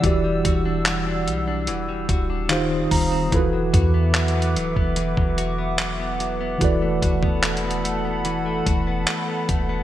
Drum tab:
HH |x-----x-----x-----x-----x-----x-----x-----o-----|x-----x-----x-x-x-x-----x-----x-----x-----x-----|x-----x-----x-x-x-x-----x-----x-----x-----x-----|
CP |------------x-----------------------x-----------|------------x-----------------------x-----------|------------x-----------------------x-----------|
BD |o-----o-----------------------o-----------o-----|o-----o--------------o-----o--------------------|o-----o--o--------------------o-----------o-----|